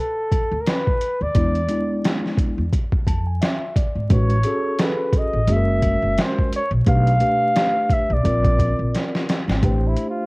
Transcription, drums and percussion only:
0.31 kick, closed hi-hat
0.66 snare, closed hi-hat
0.87 kick
1.01 closed hi-hat
1.35 kick, closed hi-hat
1.55 closed hi-hat
1.69 closed hi-hat
2.04 snare, closed hi-hat
2.26 snare
2.37 kick, closed hi-hat
2.73 kick, closed hi-hat
2.92 kick
3.07 kick, closed hi-hat
3.42 snare, closed hi-hat
3.76 kick, closed hi-hat
4.10 kick, closed hi-hat
4.30 closed hi-hat
4.44 closed hi-hat
4.79 snare, closed hi-hat
5.13 kick, closed hi-hat
5.48 closed hi-hat
5.82 kick, closed hi-hat
6.18 snare, closed hi-hat
6.39 kick
6.53 closed hi-hat
6.87 kick, closed hi-hat
7.07 closed hi-hat
7.20 closed hi-hat
7.56 snare, closed hi-hat
7.89 kick, closed hi-hat
8.25 kick, closed hi-hat
8.45 kick, closed hi-hat
8.59 kick, closed hi-hat
8.95 snare, closed hi-hat
9.15 snare
9.29 snare, closed hi-hat
9.50 snare
9.63 kick, closed hi-hat
9.97 closed hi-hat

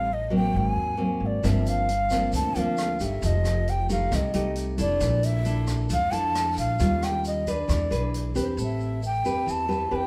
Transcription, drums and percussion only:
1.44 kick, cross-stick, closed hi-hat, shaker
1.66 closed hi-hat, shaker
1.89 closed hi-hat
2.10 kick, cross-stick, closed hi-hat, shaker
2.32 kick, closed hi-hat, shaker
2.55 closed hi-hat, shaker
2.77 cross-stick, closed hi-hat, shaker
3.00 kick, closed hi-hat, shaker
3.22 kick, closed hi-hat, shaker
3.44 cross-stick, closed hi-hat, shaker
3.68 closed hi-hat
3.89 kick, closed hi-hat, shaker
4.12 kick, cross-stick, closed hi-hat, shaker
4.34 closed hi-hat, shaker
4.56 closed hi-hat, shaker
4.78 kick, closed hi-hat, shaker
5.00 kick, cross-stick, closed hi-hat, shaker
5.23 closed hi-hat, shaker
5.45 closed hi-hat, shaker
5.67 kick, cross-stick, closed hi-hat, shaker
5.89 kick, closed hi-hat, shaker
6.12 closed hi-hat, shaker
6.35 cross-stick, closed hi-hat, shaker
6.57 kick, closed hi-hat, shaker
6.79 kick, closed hi-hat, shaker
7.02 cross-stick, closed hi-hat, shaker
7.24 closed hi-hat, shaker
7.47 kick, closed hi-hat, shaker
7.69 kick, cross-stick, closed hi-hat, shaker
7.91 closed hi-hat, shaker
8.14 closed hi-hat
8.35 kick, closed hi-hat, shaker
8.58 shaker
8.80 shaker
9.03 shaker
9.25 shaker
9.48 shaker
9.71 shaker

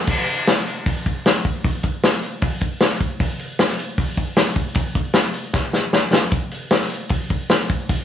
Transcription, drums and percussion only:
0.07 kick, crash, shaker
0.27 open hi-hat, shaker
0.47 snare, open hi-hat, shaker
0.67 open hi-hat, shaker
0.86 kick, open hi-hat, shaker
1.05 kick, open hi-hat, shaker
1.26 snare, open hi-hat, shaker
1.45 kick, open hi-hat, shaker
1.64 kick, open hi-hat, shaker
1.83 kick, open hi-hat, shaker
2.03 snare, open hi-hat, shaker
2.23 open hi-hat, shaker
2.42 kick, open hi-hat, shaker
2.61 kick, open hi-hat, shaker
2.80 snare, open hi-hat, shaker
3.01 kick, open hi-hat, shaker
3.11 shaker
3.20 kick, open hi-hat, shaker
3.39 open hi-hat, shaker
3.59 snare, open hi-hat, shaker
3.70 snare
3.79 open hi-hat, shaker
3.97 kick, open hi-hat, shaker
4.17 kick, open hi-hat, shaker
4.36 snare, open hi-hat, shaker
4.56 kick, open hi-hat, shaker
4.66 shaker
4.75 kick, open hi-hat, shaker
4.95 kick, open hi-hat, shaker
5.13 snare, open hi-hat, shaker
5.34 open hi-hat
5.45 shaker
5.54 kick, snare, shaker
5.73 snare, shaker
5.93 snare, shaker
6.13 snare, shaker
6.24 shaker
6.32 kick, open hi-hat, shaker
6.51 open hi-hat, shaker
6.71 snare, open hi-hat, shaker
6.80 snare
6.90 open hi-hat, shaker
7.09 kick, open hi-hat, shaker
7.30 kick, open hi-hat, shaker
7.49 snare, open hi-hat, shaker
7.70 kick, open hi-hat, shaker
7.82 shaker
7.89 kick, open hi-hat, shaker

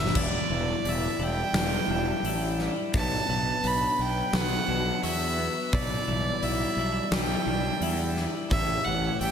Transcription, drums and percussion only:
0.06 snare
0.15 kick, crash
0.85 open hi-hat
1.54 snare, open hi-hat
2.24 open hi-hat
2.59 snare
2.93 kick, open hi-hat
3.64 open hi-hat
4.33 snare, open hi-hat
5.03 open hi-hat
5.73 kick, open hi-hat
6.43 open hi-hat
7.12 snare, open hi-hat
7.82 open hi-hat
8.16 snare
8.51 kick, open hi-hat
9.21 open hi-hat

